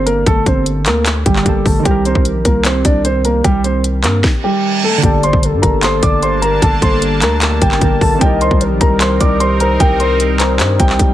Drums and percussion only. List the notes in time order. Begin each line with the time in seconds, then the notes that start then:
0.07 closed hi-hat
0.26 kick, closed hi-hat
0.46 kick, closed hi-hat
0.66 closed hi-hat
0.86 clap, closed hi-hat
1.06 clap, closed hi-hat
1.26 kick, closed hi-hat
1.36 clap
1.46 kick, closed hi-hat
1.66 kick, open hi-hat
1.85 kick, closed hi-hat
2.05 closed hi-hat
2.15 kick
2.25 closed hi-hat
2.45 kick, closed hi-hat
2.65 clap, closed hi-hat
2.85 kick, closed hi-hat
3.05 closed hi-hat
3.25 closed hi-hat
3.44 kick, closed hi-hat
3.64 closed hi-hat
3.84 closed hi-hat
4.04 clap, closed hi-hat
4.24 kick, snare
5.03 kick, closed hi-hat
5.23 closed hi-hat
5.33 kick
5.43 closed hi-hat
5.63 kick, closed hi-hat
5.83 clap, closed hi-hat
6.03 kick, closed hi-hat
6.23 closed hi-hat
6.42 closed hi-hat
6.62 kick, closed hi-hat
6.82 kick, closed hi-hat
7.02 closed hi-hat
7.22 clap, closed hi-hat
7.42 clap, closed hi-hat
7.62 kick, closed hi-hat
7.71 clap
7.81 kick, closed hi-hat
8.01 kick, open hi-hat
8.21 kick, closed hi-hat
8.41 closed hi-hat
8.51 kick
8.61 closed hi-hat
8.81 kick, closed hi-hat
9.01 clap, closed hi-hat
9.20 kick, closed hi-hat
9.40 closed hi-hat
9.60 closed hi-hat
9.80 kick, closed hi-hat
10.00 closed hi-hat
10.20 closed hi-hat
10.40 clap, closed hi-hat
10.60 clap, closed hi-hat
10.80 kick, closed hi-hat
10.89 clap
10.99 kick, closed hi-hat